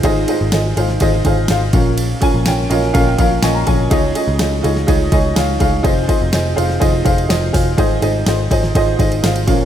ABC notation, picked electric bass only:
X:1
M:4/4
L:1/16
Q:1/4=124
K:Ab
V:1 name="Picked electric bass" clef=bass
A,,,2 z A,,, A,,,2 A,,,2 A,,,2 A,,,2 A,,,2 B,,,2- | B,,,2 z B,,, B,,,2 B,,,2 B,,,2 B,,,2 B,,,2 B,,,2 | D,,2 z D,, D,,2 D,,2 D,,2 D,,2 D,,2 D,,2 | F,,,2 z F,,, F,,,2 F,,,2 F,,,2 F,,,2 F,,,2 F,,,2 |
A,,,2 A,,,2 A,,,2 A,,,2 A,,,2 A,,,2 A,,,2 B,,,2 |]